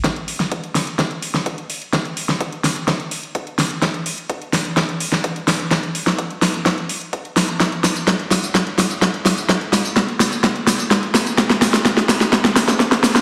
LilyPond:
\new DrumStaff \with { instrumentName = "Drums" } \drummode { \time 4/4 \tempo 4 = 127 <hh bd sn>16 hh16 hho16 <hh sn>16 <hh bd>16 hh16 <hho sn>16 hh16 <hh bd sn>16 hh16 hho16 <hh sn>16 <hh bd>16 hh16 hho16 hh16 | <hh bd sn>16 hh16 hho16 <hh sn>16 <hh bd>16 hh16 <hho sn>16 hh16 <hh bd sn>16 hh16 hho16 hh16 <hh bd>16 hh16 <hho sn>16 hh16 | <hh bd sn>16 hh16 hho16 hh16 <hh bd>16 hh16 <hho sn>16 hh16 <hh bd sn>16 hh16 hho16 <hh sn>16 <hh bd>16 hh16 <hho sn>16 hh16 | <hh bd sn>16 hh16 hho16 <hh sn>16 <hh bd>16 hh16 <hho sn>16 hh16 <hh bd sn>16 hh16 hho16 hh16 <hh bd>16 hh16 <hho sn>16 hh16 |
<hh bd sn tamb>16 hh16 <hho sn tamb>16 <hh tamb>16 <hh bd sn tamb>16 hh16 <hho sn tamb>16 <hh tamb>16 <hh bd sn tamb>16 hh16 <hho sn tamb>16 <hh tamb>16 <hh bd sn tamb>16 hh16 <hho sn tamb>16 <hh tamb>16 | <hh bd sn tamb>16 hh16 <hho sn tamb>16 <hh tamb>16 <hh bd sn tamb>16 hh16 <hho sn tamb>16 <hh tamb>16 <hh bd sn tamb>16 hh16 <hho sn tamb>16 <hh tamb>16 <hh bd sn tamb>16 hh16 <hho sn tamb>16 <hh tamb>16 | <hh bd sn tamb>16 <hh sn>16 <hho sn tamb>16 <hh sn tamb>16 <hh bd sn tamb>16 <hh sn>16 <hho sn tamb>16 <hh sn tamb>16 <hh bd sn tamb>16 <hh sn>16 <hho sn tamb>16 <hh sn tamb>16 <hh bd sn tamb>16 <hh sn>16 <hho sn tamb>16 <hh sn tamb>16 | }